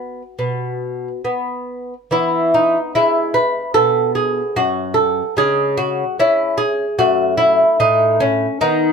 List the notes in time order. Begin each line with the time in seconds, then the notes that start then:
Already playing: B3 F#4
0.39 B2 B3
1.25 B3
2.11 E3 B3 E4
2.54 D#4
2.95 G#3 E4
3.34 B4
3.74 B2 B3 A4
4.15 G#4
4.56 F#2 F#4
4.94 A4
5.37 C#3 G#3 G#4
5.77 F#4
6.19 C#4 E4
6.58 G#4
6.99 F#2 A3 F#4
7.37 E4
7.80 A2 D#4
8.20 C#4
8.61 D#3 B3 D#4